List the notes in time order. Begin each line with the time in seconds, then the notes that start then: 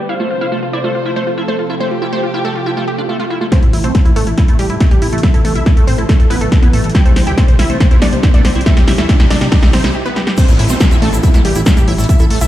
0.09 C3 F3 A3 E4 F4 A4 C5 F5
0.20 A3 F4
0.31 F4
0.41 E4 F5
0.52 A3 F4
0.63 F4
0.73 E4 C5 D5
0.84 A3 F4
0.95 F4
1.06 E4 F4
1.16 A3 C5
1.27 F4
1.38 E4 F4 A4
1.48 A3 C5
1.59 F4
1.70 E4 F4
1.80 A3 G4 C5
1.91 F4
2.02 E4 F4
2.13 A3 C5
2.23 F4
2.34 E4 F4
2.45 A3 A4
2.55 F4
2.66 E4 F4, swell
2.77 A3 F4
2.88 G4
2.98 D4 F4
3.09 A3 F4
3.20 A3 F4
3.30 E4 F4
3.41 A3 F4
3.52 C3 E3 A3 C4 E4 A4 C5, kick, snare, closed hi-hat, riser
3.62 A1 E4, closed hi-hat
3.73 A1 E4, open hi-hat
3.84 B1 A3 C4 C5, closed hi-hat
3.95 E4, kick, snare, closed hi-hat
4.05 A1 E4, closed hi-hat
4.16 A1 A3 A4, open hi-hat
4.27 A1 E4, closed hi-hat
4.38 E4, kick, snare, closed hi-hat
4.48 A1 A3 E4, closed hi-hat
4.59 A1 G3 G4, open hi-hat
4.70 A1 E4, closed hi-hat
4.80 A3 E4, kick, snare, closed hi-hat
4.91 A1 G3 G4, closed hi-hat
5.02 A1 E4, open hi-hat
5.12 A1 A3 E4, closed hi-hat
5.18 closed hi-hat
5.23 E4 E5, kick, snare, closed hi-hat
5.34 A1 E4 A4, closed hi-hat
5.45 A1 A3 A4, open hi-hat
5.55 B1 E4 E5, closed hi-hat
5.66 E4 A4, kick, snare, closed hi-hat
5.77 A1 A3 A4, closed hi-hat
5.87 A1 C4 C5, open hi-hat
5.98 A1 E4 A4, closed hi-hat
6.09 A3 A4, kick, snare, closed hi-hat
6.20 A1 A4, closed hi-hat
6.30 A1 B3 E4 B4, open hi-hat
6.41 A1 A3 A4, closed hi-hat
6.52 A4, kick, snare, closed hi-hat
6.62 A1 B3 E4 B4, closed hi-hat
6.73 A1 A3 A4, open hi-hat
6.84 A1 A4, closed hi-hat
6.90 closed hi-hat
6.95 C3 G3 E4 G4 G5, kick, snare, closed hi-hat
7.05 C2 A3 C5, closed hi-hat
7.16 C2 C5, snare, open hi-hat
7.27 D2 E4 G4 G5, closed hi-hat
7.37 A3 C5, kick, snare, closed hi-hat
7.48 C2 C5, closed hi-hat
7.59 C2 E4 E5, snare, open hi-hat
7.70 C2 A3 C5, closed hi-hat
7.80 C5, kick, snare, closed hi-hat
7.91 C2 E4 C5, closed hi-hat
8.02 C2 A3 D4 D5, snare, open hi-hat
8.13 C2 C5, closed hi-hat
8.23 E4 C5, kick, snare, closed hi-hat
8.34 C2 A3 D4 D5, closed hi-hat
8.45 C2 C5, snare, open hi-hat
8.55 C2 E4 C5, closed hi-hat
8.61 closed hi-hat
8.66 A3 E4 E5, kick, snare, closed hi-hat
8.77 C2 G4, snare, closed hi-hat
8.88 C2 E4 G4, snare, open hi-hat
8.98 D2 A3 E4 E5, snare, closed hi-hat
9.09 G4, kick, snare, closed hi-hat
9.20 C2 E4 G4, snare, closed hi-hat
9.30 C2 A3 D4 D5, snare, open hi-hat
9.41 C2 G4, snare, closed hi-hat
9.52 E4 G4, kick, snare, closed hi-hat
9.63 C2 A3 G4, snare, closed hi-hat
9.73 C2 C4 C5, snare, open hi-hat
9.84 C2 E4 G4, snare, closed hi-hat
9.95 G4
10.06 B3 B4
10.16 G4, snare
10.27 G4, snare
10.37 A3 C4 C5, kick, closed hi-hat, crash, downlifter, shaker
10.48 A1 E4, closed hi-hat, shaker
10.59 A1 E4, open hi-hat
10.69 B1 A3 C4 C5, closed hi-hat, shaker
10.80 E4, kick, snare, closed hi-hat, shaker
10.91 A1 E4, closed hi-hat, shaker
11.02 A1 A3 A4, open hi-hat
11.13 A1 E4, closed hi-hat, shaker
11.23 E4, kick, closed hi-hat, shaker
11.34 A1 A3 E4, snare, closed hi-hat, shaker
11.45 A1 G3 G4, open hi-hat
11.55 A1 E4, closed hi-hat, shaker
11.66 A3 E4, kick, snare, closed hi-hat, shaker
11.77 A1 G3 G4, closed hi-hat, shaker
11.88 A1 E4, open hi-hat
11.98 A1 A3 E4, closed hi-hat, shaker
12.04 closed hi-hat
12.09 E4 E5, kick, closed hi-hat, shaker
12.19 A1 E4 A4, closed hi-hat, shaker
12.30 A1 A3 A4, open hi-hat
12.41 B1 E4 E5, closed hi-hat, shaker